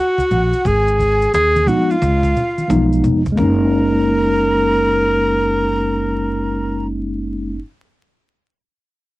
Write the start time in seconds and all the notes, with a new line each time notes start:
Already playing: F#4 F#5
0.18 cajon bass, maracas
0.31 A#1, cajon slap, low conga, maracas
0.53 cajon slap, maracas
0.65 G#1 G#4 G#5, cajon bass, maracas
0.88 maracas
0.99 cajon bass, maracas
1.22 cajon slap, maracas
1.34 D#2 G#4 G#5, cajon slap, maracas
1.56 high conga, maracas
1.66 F3 G#3 B3 D#4 F#4 F#5, cajon bass, low conga, maracas
1.90 F4 F5, cajon slap, maracas
2.01 C#2, cajon slap, high conga, maracas
2.23 cajon bass, maracas
2.36 low conga, maracas
2.58 cajon slap, high conga, maracas
2.68 B1 E3 G#3 B3 D#4, cajon slap, maracas
2.74 F3
2.92 maracas
3.03 F1, cajon slap, low conga, maracas
3.26 cajon bass, cajon slap, maracas
3.32 G#3 A#3
3.37 F#1 C#4 A#4 A#5, cajon bass, cajon slap, high conga
3.43 D#4